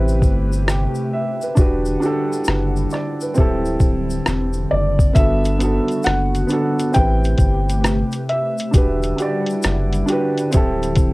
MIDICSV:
0, 0, Header, 1, 6, 480
1, 0, Start_track
1, 0, Tempo, 895522
1, 844, Time_signature, 4, 2, 24, 8
1, 5967, End_track
2, 0, Start_track
2, 0, Title_t, "Felt piano"
2, 0, Program_c, 0, 0
2, 2523, Note_on_c, 0, 74, 79
2, 2747, Note_off_c, 0, 74, 0
2, 2759, Note_on_c, 0, 76, 101
2, 3220, Note_off_c, 0, 76, 0
2, 3240, Note_on_c, 0, 78, 93
2, 3700, Note_off_c, 0, 78, 0
2, 3720, Note_on_c, 0, 79, 103
2, 4445, Note_on_c, 0, 76, 89
2, 4464, Note_off_c, 0, 79, 0
2, 5383, Note_off_c, 0, 76, 0
2, 5967, End_track
3, 0, Start_track
3, 0, Title_t, "Upright piano"
3, 0, Program_c, 1, 0
3, 0, Control_c, 1, 64, 127
3, 0, Note_on_c, 1, 60, 91
3, 0, Note_on_c, 1, 64, 89
3, 0, Note_on_c, 1, 67, 84
3, 0, Note_on_c, 1, 71, 104
3, 367, Note_on_c, 1, 79, 60
3, 372, Note_off_c, 1, 71, 0
3, 593, Note_off_c, 1, 79, 0
3, 607, Note_on_c, 1, 76, 76
3, 659, Note_off_c, 1, 60, 0
3, 664, Note_off_c, 1, 64, 0
3, 669, Note_off_c, 1, 67, 0
3, 754, Note_off_c, 1, 76, 0
3, 767, Note_on_c, 1, 71, 69
3, 831, Note_on_c, 1, 62, 88
3, 841, Note_on_c, 1, 66, 82
3, 851, Control_c, 1, 64, 0
3, 851, Note_on_c, 1, 67, 76
3, 852, Note_off_c, 1, 71, 0
3, 860, Note_on_c, 1, 71, 97
3, 938, Control_c, 1, 64, 127
3, 1029, Note_off_c, 1, 62, 0
3, 1034, Note_off_c, 1, 66, 0
3, 1040, Note_off_c, 1, 67, 0
3, 1044, Note_off_c, 1, 71, 0
3, 1072, Note_on_c, 1, 62, 95
3, 1081, Note_on_c, 1, 66, 74
3, 1092, Note_on_c, 1, 67, 80
3, 1101, Note_on_c, 1, 69, 93
3, 1328, Note_on_c, 1, 71, 58
3, 1451, Note_off_c, 1, 62, 0
3, 1456, Note_off_c, 1, 66, 0
3, 1461, Note_off_c, 1, 67, 0
3, 1466, Note_off_c, 1, 69, 0
3, 1554, Note_off_c, 1, 71, 0
3, 1569, Note_on_c, 1, 74, 73
3, 1715, Note_off_c, 1, 74, 0
3, 1726, Note_on_c, 1, 71, 61
3, 1791, Note_on_c, 1, 60, 93
3, 1800, Note_on_c, 1, 64, 80
3, 1812, Control_c, 1, 64, 0
3, 1812, Note_on_c, 1, 67, 85
3, 1822, Note_on_c, 1, 69, 102
3, 1912, Control_c, 1, 64, 127
3, 1951, Note_off_c, 1, 71, 0
3, 2580, Note_off_c, 1, 60, 0
3, 2585, Note_off_c, 1, 64, 0
3, 2590, Note_off_c, 1, 67, 0
3, 2596, Note_off_c, 1, 69, 0
3, 2750, Note_on_c, 1, 59, 70
3, 2760, Note_on_c, 1, 62, 64
3, 2771, Note_on_c, 1, 66, 62
3, 2772, Control_c, 1, 64, 0
3, 2781, Note_on_c, 1, 69, 81
3, 2866, Control_c, 1, 64, 127
3, 2949, Note_off_c, 1, 59, 0
3, 2954, Note_off_c, 1, 62, 0
3, 2959, Note_off_c, 1, 66, 0
3, 2965, Note_off_c, 1, 69, 0
3, 2991, Note_on_c, 1, 59, 70
3, 3002, Note_on_c, 1, 62, 60
3, 3011, Note_on_c, 1, 66, 64
3, 3023, Note_on_c, 1, 69, 82
3, 3371, Note_off_c, 1, 59, 0
3, 3376, Note_off_c, 1, 62, 0
3, 3381, Note_off_c, 1, 66, 0
3, 3386, Note_off_c, 1, 69, 0
3, 3469, Note_on_c, 1, 59, 75
3, 3479, Note_on_c, 1, 62, 71
3, 3490, Note_on_c, 1, 66, 67
3, 3500, Note_on_c, 1, 69, 83
3, 3710, Note_on_c, 1, 60, 74
3, 3716, Note_off_c, 1, 59, 0
3, 3721, Note_on_c, 1, 64, 70
3, 3722, Note_off_c, 1, 62, 0
3, 3727, Note_off_c, 1, 66, 0
3, 3730, Control_c, 1, 64, 0
3, 3730, Note_on_c, 1, 67, 67
3, 3732, Note_off_c, 1, 69, 0
3, 3741, Note_on_c, 1, 71, 82
3, 3816, Control_c, 1, 64, 127
3, 4499, Note_off_c, 1, 60, 0
3, 4505, Note_off_c, 1, 64, 0
3, 4510, Note_off_c, 1, 67, 0
3, 4515, Note_off_c, 1, 71, 0
3, 4669, Note_on_c, 1, 62, 73
3, 4679, Note_on_c, 1, 66, 63
3, 4689, Note_on_c, 1, 67, 72
3, 4691, Control_c, 1, 64, 0
3, 4700, Note_on_c, 1, 71, 87
3, 4788, Control_c, 1, 64, 127
3, 4868, Note_off_c, 1, 62, 0
3, 4874, Note_off_c, 1, 66, 0
3, 4878, Note_off_c, 1, 67, 0
3, 4884, Note_off_c, 1, 71, 0
3, 4912, Note_on_c, 1, 62, 66
3, 4922, Note_on_c, 1, 66, 66
3, 4932, Note_on_c, 1, 67, 73
3, 4942, Note_on_c, 1, 74, 83
3, 5291, Note_off_c, 1, 62, 0
3, 5296, Note_off_c, 1, 66, 0
3, 5301, Note_off_c, 1, 67, 0
3, 5306, Note_off_c, 1, 74, 0
3, 5393, Note_on_c, 1, 62, 88
3, 5404, Note_on_c, 1, 66, 84
3, 5414, Note_on_c, 1, 67, 82
3, 5426, Note_on_c, 1, 71, 102
3, 5633, Note_on_c, 1, 60, 92
3, 5639, Note_off_c, 1, 62, 0
3, 5643, Note_on_c, 1, 64, 79
3, 5644, Note_off_c, 1, 66, 0
3, 5645, Note_off_c, 1, 67, 0
3, 5652, Control_c, 1, 64, 0
3, 5653, Note_on_c, 1, 67, 87
3, 5655, Note_off_c, 1, 71, 0
3, 5664, Note_on_c, 1, 69, 105
3, 5752, Control_c, 1, 64, 127
3, 5967, Note_off_c, 1, 60, 0
3, 5967, Note_off_c, 1, 64, 0
3, 5967, Note_off_c, 1, 67, 0
3, 5967, Note_off_c, 1, 69, 0
3, 5967, End_track
4, 0, Start_track
4, 0, Title_t, "Analog synth pad"
4, 0, Program_c, 2, 89
4, 0, Note_on_c, 2, 48, 76
4, 0, Note_on_c, 2, 57, 75
4, 0, Note_on_c, 2, 67, 88
4, 0, Note_on_c, 2, 71, 67
4, 822, Note_off_c, 2, 71, 0
4, 834, Note_off_c, 2, 48, 0
4, 834, Note_off_c, 2, 57, 0
4, 834, Note_off_c, 2, 67, 0
4, 840, Note_on_c, 2, 50, 74
4, 840, Note_on_c, 2, 55, 61
4, 842, Note_on_c, 2, 64, 66
4, 843, Note_on_c, 2, 78, 81
4, 1794, Note_off_c, 2, 78, 0
4, 1804, Note_on_c, 2, 60, 76
4, 2744, Note_off_c, 2, 64, 0
4, 2755, Note_off_c, 2, 60, 0
4, 2763, Note_on_c, 2, 66, 81
4, 2765, Note_on_c, 2, 59, 65
4, 3700, Note_off_c, 2, 50, 0
4, 3701, Note_off_c, 2, 55, 0
4, 3714, Note_off_c, 2, 66, 0
4, 3715, Note_off_c, 2, 59, 0
4, 3724, Note_on_c, 2, 57, 68
4, 3724, Note_on_c, 2, 67, 97
4, 3726, Note_on_c, 2, 48, 80
4, 3727, Note_on_c, 2, 71, 69
4, 4675, Note_off_c, 2, 48, 0
4, 4675, Note_off_c, 2, 57, 0
4, 4675, Note_off_c, 2, 67, 0
4, 4676, Note_off_c, 2, 71, 0
4, 4683, Note_on_c, 2, 55, 73
4, 4683, Note_on_c, 2, 78, 83
4, 4684, Note_on_c, 2, 50, 76
4, 4686, Note_on_c, 2, 64, 65
4, 5634, Note_off_c, 2, 55, 0
4, 5634, Note_off_c, 2, 78, 0
4, 5646, Note_on_c, 2, 60, 69
4, 5647, Note_on_c, 2, 55, 78
4, 5967, Note_off_c, 2, 50, 0
4, 5967, Note_off_c, 2, 55, 0
4, 5967, Note_off_c, 2, 60, 0
4, 5967, Note_off_c, 2, 64, 0
4, 5967, End_track
5, 0, Start_track
5, 0, Title_t, "Sub bass"
5, 0, Program_c, 3, 38
5, 0, Note_on_c, 3, 33, 103
5, 121, Note_on_c, 3, 31, 95
5, 129, Note_off_c, 3, 33, 0
5, 464, Note_off_c, 3, 31, 0
5, 847, Note_on_c, 3, 28, 103
5, 1053, Note_off_c, 3, 28, 0
5, 1328, Note_on_c, 3, 30, 97
5, 1533, Note_off_c, 3, 30, 0
5, 1815, Note_on_c, 3, 26, 104
5, 2017, Note_off_c, 3, 26, 0
5, 2041, Note_on_c, 3, 26, 89
5, 2249, Note_off_c, 3, 26, 0
5, 2290, Note_on_c, 3, 28, 85
5, 2494, Note_off_c, 3, 28, 0
5, 2530, Note_on_c, 3, 30, 97
5, 2734, Note_off_c, 3, 30, 0
5, 2768, Note_on_c, 3, 31, 113
5, 3108, Note_off_c, 3, 31, 0
5, 3250, Note_on_c, 3, 30, 89
5, 3454, Note_off_c, 3, 30, 0
5, 3736, Note_on_c, 3, 33, 104
5, 3937, Note_off_c, 3, 33, 0
5, 3962, Note_on_c, 3, 31, 88
5, 4305, Note_off_c, 3, 31, 0
5, 4688, Note_on_c, 3, 28, 113
5, 4893, Note_off_c, 3, 28, 0
5, 5170, Note_on_c, 3, 30, 106
5, 5374, Note_off_c, 3, 30, 0
5, 5655, Note_on_c, 3, 26, 99
5, 5967, Note_off_c, 3, 26, 0
5, 5967, End_track
6, 0, Start_track
6, 0, Title_t, "Drums"
6, 44, Note_on_c, 9, 82, 46
6, 98, Note_off_c, 9, 82, 0
6, 118, Note_on_c, 9, 36, 86
6, 121, Note_on_c, 9, 82, 49
6, 172, Note_off_c, 9, 36, 0
6, 174, Note_off_c, 9, 82, 0
6, 282, Note_on_c, 9, 82, 49
6, 335, Note_off_c, 9, 82, 0
6, 364, Note_on_c, 9, 37, 114
6, 367, Note_on_c, 9, 82, 70
6, 418, Note_off_c, 9, 37, 0
6, 420, Note_off_c, 9, 82, 0
6, 509, Note_on_c, 9, 82, 50
6, 563, Note_off_c, 9, 82, 0
6, 759, Note_on_c, 9, 82, 54
6, 812, Note_off_c, 9, 82, 0
6, 840, Note_on_c, 9, 82, 73
6, 843, Note_on_c, 9, 36, 126
6, 894, Note_off_c, 9, 82, 0
6, 896, Note_off_c, 9, 36, 0
6, 994, Note_on_c, 9, 82, 53
6, 1048, Note_off_c, 9, 82, 0
6, 1084, Note_on_c, 9, 82, 51
6, 1137, Note_off_c, 9, 82, 0
6, 1247, Note_on_c, 9, 82, 47
6, 1301, Note_off_c, 9, 82, 0
6, 1311, Note_on_c, 9, 82, 69
6, 1330, Note_on_c, 9, 37, 103
6, 1365, Note_off_c, 9, 82, 0
6, 1383, Note_off_c, 9, 37, 0
6, 1482, Note_on_c, 9, 82, 46
6, 1536, Note_off_c, 9, 82, 0
6, 1556, Note_on_c, 9, 82, 51
6, 1576, Note_on_c, 9, 37, 34
6, 1609, Note_off_c, 9, 82, 0
6, 1630, Note_off_c, 9, 37, 0
6, 1719, Note_on_c, 9, 82, 51
6, 1773, Note_off_c, 9, 82, 0
6, 1795, Note_on_c, 9, 82, 64
6, 1811, Note_on_c, 9, 36, 92
6, 1848, Note_off_c, 9, 82, 0
6, 1864, Note_off_c, 9, 36, 0
6, 1959, Note_on_c, 9, 82, 43
6, 2013, Note_off_c, 9, 82, 0
6, 2037, Note_on_c, 9, 82, 51
6, 2038, Note_on_c, 9, 36, 85
6, 2091, Note_off_c, 9, 36, 0
6, 2091, Note_off_c, 9, 82, 0
6, 2199, Note_on_c, 9, 82, 45
6, 2253, Note_off_c, 9, 82, 0
6, 2284, Note_on_c, 9, 37, 105
6, 2286, Note_on_c, 9, 82, 70
6, 2337, Note_off_c, 9, 37, 0
6, 2339, Note_off_c, 9, 82, 0
6, 2429, Note_on_c, 9, 82, 52
6, 2483, Note_off_c, 9, 82, 0
6, 2674, Note_on_c, 9, 36, 102
6, 2679, Note_on_c, 9, 82, 58
6, 2728, Note_off_c, 9, 36, 0
6, 2732, Note_off_c, 9, 82, 0
6, 2763, Note_on_c, 9, 36, 124
6, 2763, Note_on_c, 9, 82, 69
6, 2764, Note_on_c, 9, 42, 99
6, 2816, Note_off_c, 9, 82, 0
6, 2817, Note_off_c, 9, 36, 0
6, 2817, Note_off_c, 9, 42, 0
6, 2919, Note_on_c, 9, 82, 51
6, 2922, Note_on_c, 9, 42, 47
6, 2973, Note_off_c, 9, 82, 0
6, 2976, Note_off_c, 9, 42, 0
6, 3004, Note_on_c, 9, 42, 66
6, 3006, Note_on_c, 9, 82, 50
6, 3057, Note_off_c, 9, 42, 0
6, 3059, Note_off_c, 9, 82, 0
6, 3154, Note_on_c, 9, 42, 48
6, 3168, Note_on_c, 9, 82, 45
6, 3207, Note_off_c, 9, 42, 0
6, 3221, Note_off_c, 9, 82, 0
6, 3232, Note_on_c, 9, 82, 68
6, 3250, Note_on_c, 9, 42, 75
6, 3253, Note_on_c, 9, 37, 112
6, 3286, Note_off_c, 9, 82, 0
6, 3303, Note_off_c, 9, 42, 0
6, 3306, Note_off_c, 9, 37, 0
6, 3402, Note_on_c, 9, 42, 40
6, 3404, Note_on_c, 9, 82, 49
6, 3456, Note_off_c, 9, 42, 0
6, 3457, Note_off_c, 9, 82, 0
6, 3478, Note_on_c, 9, 82, 49
6, 3486, Note_on_c, 9, 42, 72
6, 3531, Note_off_c, 9, 82, 0
6, 3540, Note_off_c, 9, 42, 0
6, 3641, Note_on_c, 9, 82, 49
6, 3642, Note_on_c, 9, 42, 51
6, 3695, Note_off_c, 9, 82, 0
6, 3696, Note_off_c, 9, 42, 0
6, 3717, Note_on_c, 9, 82, 72
6, 3723, Note_on_c, 9, 42, 80
6, 3731, Note_on_c, 9, 36, 91
6, 3771, Note_off_c, 9, 82, 0
6, 3776, Note_off_c, 9, 42, 0
6, 3785, Note_off_c, 9, 36, 0
6, 3882, Note_on_c, 9, 82, 44
6, 3886, Note_on_c, 9, 42, 46
6, 3936, Note_off_c, 9, 82, 0
6, 3940, Note_off_c, 9, 42, 0
6, 3954, Note_on_c, 9, 42, 73
6, 3958, Note_on_c, 9, 36, 84
6, 3963, Note_on_c, 9, 82, 46
6, 4007, Note_off_c, 9, 42, 0
6, 4012, Note_off_c, 9, 36, 0
6, 4016, Note_off_c, 9, 82, 0
6, 4124, Note_on_c, 9, 82, 46
6, 4125, Note_on_c, 9, 42, 45
6, 4178, Note_off_c, 9, 82, 0
6, 4179, Note_off_c, 9, 42, 0
6, 4203, Note_on_c, 9, 42, 82
6, 4205, Note_on_c, 9, 37, 116
6, 4209, Note_on_c, 9, 82, 70
6, 4256, Note_off_c, 9, 42, 0
6, 4258, Note_off_c, 9, 37, 0
6, 4262, Note_off_c, 9, 82, 0
6, 4351, Note_on_c, 9, 82, 53
6, 4357, Note_on_c, 9, 42, 45
6, 4404, Note_off_c, 9, 82, 0
6, 4410, Note_off_c, 9, 42, 0
6, 4445, Note_on_c, 9, 42, 68
6, 4498, Note_off_c, 9, 42, 0
6, 4598, Note_on_c, 9, 82, 53
6, 4609, Note_on_c, 9, 42, 60
6, 4652, Note_off_c, 9, 82, 0
6, 4663, Note_off_c, 9, 42, 0
6, 4682, Note_on_c, 9, 82, 71
6, 4684, Note_on_c, 9, 36, 122
6, 4685, Note_on_c, 9, 42, 102
6, 4736, Note_off_c, 9, 82, 0
6, 4737, Note_off_c, 9, 36, 0
6, 4739, Note_off_c, 9, 42, 0
6, 4839, Note_on_c, 9, 82, 45
6, 4844, Note_on_c, 9, 42, 45
6, 4893, Note_off_c, 9, 82, 0
6, 4897, Note_off_c, 9, 42, 0
6, 4923, Note_on_c, 9, 42, 73
6, 4928, Note_on_c, 9, 82, 51
6, 4976, Note_off_c, 9, 42, 0
6, 4981, Note_off_c, 9, 82, 0
6, 5073, Note_on_c, 9, 42, 49
6, 5090, Note_on_c, 9, 82, 44
6, 5126, Note_off_c, 9, 42, 0
6, 5144, Note_off_c, 9, 82, 0
6, 5159, Note_on_c, 9, 82, 65
6, 5167, Note_on_c, 9, 42, 84
6, 5170, Note_on_c, 9, 37, 99
6, 5213, Note_off_c, 9, 82, 0
6, 5220, Note_off_c, 9, 42, 0
6, 5223, Note_off_c, 9, 37, 0
6, 5321, Note_on_c, 9, 42, 43
6, 5328, Note_on_c, 9, 82, 46
6, 5374, Note_off_c, 9, 42, 0
6, 5381, Note_off_c, 9, 82, 0
6, 5402, Note_on_c, 9, 82, 51
6, 5406, Note_on_c, 9, 42, 81
6, 5455, Note_off_c, 9, 82, 0
6, 5460, Note_off_c, 9, 42, 0
6, 5562, Note_on_c, 9, 42, 47
6, 5565, Note_on_c, 9, 82, 51
6, 5615, Note_off_c, 9, 42, 0
6, 5618, Note_off_c, 9, 82, 0
6, 5641, Note_on_c, 9, 82, 70
6, 5642, Note_on_c, 9, 42, 79
6, 5651, Note_on_c, 9, 36, 89
6, 5694, Note_off_c, 9, 82, 0
6, 5696, Note_off_c, 9, 42, 0
6, 5705, Note_off_c, 9, 36, 0
6, 5804, Note_on_c, 9, 82, 50
6, 5805, Note_on_c, 9, 42, 45
6, 5858, Note_off_c, 9, 42, 0
6, 5858, Note_off_c, 9, 82, 0
6, 5872, Note_on_c, 9, 42, 72
6, 5878, Note_on_c, 9, 36, 86
6, 5882, Note_on_c, 9, 82, 50
6, 5926, Note_off_c, 9, 42, 0
6, 5931, Note_off_c, 9, 36, 0
6, 5936, Note_off_c, 9, 82, 0
6, 5967, End_track
0, 0, End_of_file